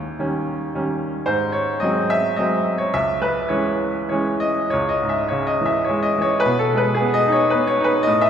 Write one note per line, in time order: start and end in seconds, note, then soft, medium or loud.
0.00 1.24 D#2 soft
0.19 0.64 D#3 soft
0.19 0.64 G3 soft
0.19 0.64 C#4 soft
0.75 1.18 D#3 soft
0.75 1.18 G3 soft
0.75 1.18 C#4 soft
1.26 2.89 G#2 medium
1.26 1.55 C5 medium
1.52 1.79 C#5 medium
1.80 2.27 F#3 soft
1.80 2.28 G#3 soft
1.80 2.28 C4 soft
1.80 2.07 D#5 medium
2.10 2.39 E5 medium
2.36 2.83 F#3 soft
2.36 2.83 G#3 soft
2.36 2.83 C4 soft
2.36 2.80 D#5 medium
2.78 2.92 C#5 medium
2.94 4.68 C#2 soft
2.94 3.22 E5 medium
3.22 3.48 B4 medium
3.49 3.98 E3 soft
3.49 3.98 G#3 soft
3.49 3.98 C#4 soft
3.49 4.08 C#5 medium
4.09 4.60 E3 soft
4.09 4.60 G#3 soft
4.09 4.61 C#4 soft
4.09 4.39 C#5 medium
4.40 4.72 D#5 medium
4.70 6.40 C#2 soft
4.70 4.92 C#5 medium
4.89 5.11 D#5 medium
5.02 6.13 G#2 soft
5.09 5.28 E5 medium
5.28 6.41 C#3 soft
5.28 5.48 C#5 medium
5.47 5.66 D#5 medium
5.61 6.16 E3 soft
5.66 5.87 E5 medium
5.84 6.04 C#5 medium
5.89 6.42 G#3 soft
6.03 6.24 D#5 medium
6.18 6.44 E3 soft
6.18 6.42 C#5 medium
6.40 6.61 B4 medium
6.45 8.03 B2 medium
6.59 6.78 A4 medium
6.73 7.78 G#3 soft
6.77 6.98 B4 medium
6.95 7.14 G#4 medium
7.00 7.52 B3 soft
7.14 7.34 D#5 medium
7.27 7.78 D#4 soft
7.32 7.50 C#5 medium
7.50 8.05 B3 medium
7.50 7.68 B4 medium
7.67 7.86 C#5 medium
7.80 8.06 D#4 medium
7.84 8.03 B4 medium
8.03 8.30 A2 medium
8.03 8.23 D#5 medium
8.21 8.30 E5 medium